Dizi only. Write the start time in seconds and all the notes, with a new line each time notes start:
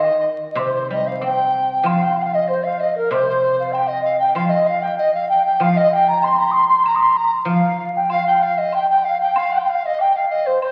Already playing: D#5
0.52 D#5
0.59 C5
0.91 D#5
1.07 F5
1.24 G5
1.87 F5
2.03 G5
2.18 F5 G5
2.26 F5
2.34 D#5
2.47 C5
2.63 F5
2.80 D#5
2.95 A#4
3.11 C5
3.72 G5
3.87 D#5
4.04 F5
4.19 G5
4.34 F5
4.49 D#5
4.66 F5
4.82 G5
4.98 D#5
5.14 F5
5.29 G5
5.45 G5
5.62 F5
5.77 D#5
5.93 G5
6.08 A#5
6.24 C6
6.38 A#5
6.51 C6 D#6
6.68 C6
6.83 A#5
6.95 D#6
6.99 C6
7.17 A#5
7.47 F5
8.09 F5
8.26 G5
8.42 F5
8.58 D#5
8.74 G5
8.89 G5
9.04 F5
9.20 G5
9.38 F5
9.52 G5
9.69 F5
9.85 D#5
10.00 G5
10.15 F5
10.30 D#5
10.46 C5
10.62 C5